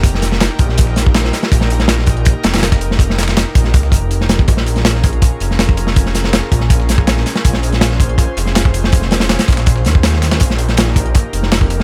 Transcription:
<<
  \new Staff \with { instrumentName = "Analog synth pad" } { \time 4/4 \key bes \dorian \tempo 4 = 162 << { bes'1~ | bes'1~ | bes'1 | bes'1~ |
bes'1 | c''1~ | c''1 | bes'1 | } \\ { <bes ees' g'>1~ | <bes ees' g'>1~ | <bes ees' g'>1 | <des' f' aes'>1~ |
<des' f' aes'>1~ | <des' f' aes'>1~ | <des' f' aes'>1 | <bes ees' g'>1 | } >> }
  \new Staff \with { instrumentName = "Detuned saw bass" } { \clef bass \time 4/4 \key bes \dorian f,,4 r8 bes,,2 r8 | bes,,2 r8 f,,4.~ | f,,4 r8 bes,,8 des,8 f,,4. | bes,,2 r8 f,,4.~ |
f,,4 r8 bes,,2 r8 | bes,,2 r8 f,,4.~ | f,,4 r8 bes,,4 ees,4. | bes,,2 r8 f,,4. | }
  \new DrumStaff \with { instrumentName = "Drums" } \drummode { \time 4/4 <hh bd>16 sn16 <hh sn>16 sn16 <hh sn>8 <hh bd>16 sn16 <hh bd>16 sn16 <hh sn>16 bd16 <hh sn>16 sn16 <hh sn>16 <hh sn>16 | <hh bd>16 sn16 hh16 <hh sn>16 <hh sn>16 sn16 <hh bd>16 hh16 <hh bd>8 <hh sn>16 <hh sn>32 <hh sn>32 <hh sn>16 <hh bd sn>16 hh16 sn16 | <hh bd>16 sn16 <hh sn>32 <hh sn>32 <hh sn>16 <hh sn>8 <hh bd>16 sn16 <hh bd>16 sn16 <hh bd>8 hh16 sn16 <hh sn>16 <hh bd>16 | <hh bd>16 sn16 hh16 <hh sn>16 <hh sn>16 sn16 <hh bd>16 hh16 <hh bd>8 hh16 sn16 <hh hho sn>16 bd16 hh16 sn16 |
<hh bd>16 sn16 <hh sn>16 sn16 <hh sn>8 <hh bd>16 sn16 <hh bd>16 sn16 <hh sn>16 bd16 <hh sn>16 sn16 <hh sn>16 <hh sn>16 | <hh bd>16 sn16 hh16 <hh sn>16 <hh sn>16 sn16 <hh bd>16 hh16 <hh bd>8 hh16 sn16 <hh hho sn>16 bd16 hh16 sn16 | <hh bd>16 sn16 <hh sn>16 <hh sn>16 <hh sn>16 <hh sn>16 <hh bd sn>32 <hh sn>32 <hh sn>16 <hh bd>16 sn16 <hh sn>16 bd16 <hh sn>16 sn16 <hh sn>16 <hh sn>16 | <hh bd>16 sn16 hh16 <hh sn>16 <hh sn>16 sn16 <hh bd>16 hh16 <hh bd>8 hh16 sn16 <hh hho sn>16 bd16 hh16 sn16 | }
>>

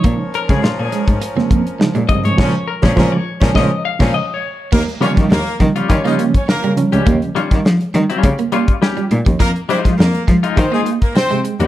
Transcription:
<<
  \new Staff \with { instrumentName = "Clean electric guitar" } { \time 4/4 \key ees \mixolydian \tempo 4 = 103 des''8 bes'16 aes'16 f'16 aes'8 r4. r16 ees''16 des''16~ | des''8 bes'16 aes'16 bes'16 des''8 r16 ees''8 f''8 \tuplet 3/2 { ees''8 des''4 } | r8 <g des' f'>16 r4 <g des' f'>16 <g des' f'>16 <g des' f'>16 r4 r16 <g des' g'>16 | r8 <g des' f'>16 r4 <g des' f'>16 r8 <g des' f'>16 r16 <g des' g'>16 r8. |
r8 <aes ees' f'>16 r4 <aes ees' f'>16 <aes ees' f'>16 <aes ees' f'>16 r4 r16 <aes ees' g'>16 | }
  \new Staff \with { instrumentName = "Horn section" } { \time 4/4 \key ees \mixolydian <f des' bes'>1 | <f des' bes'>8 r16 <f des' bes'>16 <f des' bes'>8 r16 <f des' bes'>16 <f des' bes'>8 r16 <f des' bes'>8 r8. | <bes bes'>16 r16 <des' des''>16 r16 <bes bes'>8 r8 <des' des''>16 <ees' ees''>16 r16 <des' des''>16 <bes bes'>8 r8 | r1 |
<bes bes'>16 r16 <c' c''>16 r16 <bes bes'>8 r8 <c' c''>16 <aes aes'>16 r16 <bes bes'>16 <c' c''>8 r8 | }
  \new Staff \with { instrumentName = "Clean electric guitar" } { \clef bass \time 4/4 \key ees \mixolydian bes16 r8 aes16 r8 aes16 r8 bes16 bes16 r8 aes16 aes16 r16 | r1 | bes16 r8 g16 r8 g16 r8 bes16 bes16 r8 g16 g16 r16 | bes16 r8 g16 r8 g16 r8 bes16 bes16 r8 g16 r16 f16 |
f16 r8 aes16 r8 aes16 r8 bes16 bes16 r8 aes16 aes16 r16 | }
  \new Staff \with { instrumentName = "Reed electric piano" } { \clef bass \time 4/4 \key ees \mixolydian <des f aes ees'>16 r2 <des f aes c'>16 r8 <des f aes ees'>16 r16 <des f aes c'>8 | <des f aes>8 r16 <des f aes>16 <des f aes>8 r16 <des f aes>16 <des f aes>8 r16 <des f aes>8 r8. | r16 <g bes>16 <des f g bes>8 r8 <des f g bes>16 r8 <des f g des'>8 r8. <des f g des'>8~ | <des f g des'>16 r2 r8. <bes g'>16 f'16 <g ees'>16 <f des'>16 |
r1 | }
  \new Staff \with { instrumentName = "Cello" } { \clef bass \time 4/4 \key ees \mixolydian bes,16 r8 des16 bes,16 bes,16 r16 aes,16 r16 f,16 f,8 r16 bes,16 g,16 aes,16 | bes,8 r16 bes,16 bes,8 r16 bes,16 bes,8 r16 bes,8 r8. | ees,16 r16 ees16 ees16 ees,16 r16 ees16 r16 ees8 r8 des16 des16 r16 des,16 | ees,16 r16 ees16 ees16 f16 r16 ees16 r16 des8 r4 bes,16 ees,16 |
f,16 r16 f16 f16 f,16 r16 f16 r16 ees8 r8 c16 c16 r16 ees,16 | }
  \new DrumStaff \with { instrumentName = "Drums" } \drummode { \time 4/4 <hh bd>8 hh16 <hh bd sn>16 sn8 <hh sn>16 <hh bd>16 hh16 sn16 <hh bd>16 hh16 sn16 hh16 <hh bd>16 hh16 | <cymc bd sn>8. <bd sn>16 <bd sn>8. <bd sn>16 <bd sn>8. <cymc bd sn>16 r4 | <cymc bd>16 hh16 hh16 <hh bd sn>16 sn16 hh16 <hh bd sn>16 hh16 <hh bd>16 <hh sn>16 hh16 <hh bd>16 sn16 hh16 hh16 hh16 | <hh bd>16 hh16 hh16 <hh bd sn>16 sn16 hh16 hh16 hh16 <hh bd>16 hh16 hh16 <hh bd>16 sn16 hh16 hh16 <hh bd>16 |
<hh bd>16 hh16 hh16 <hh bd sn>16 sn16 hh16 <hh bd sn>16 hh16 <hh bd>16 sn16 hh16 <hh bd>16 sn16 hh16 hh16 hh16 | }
>>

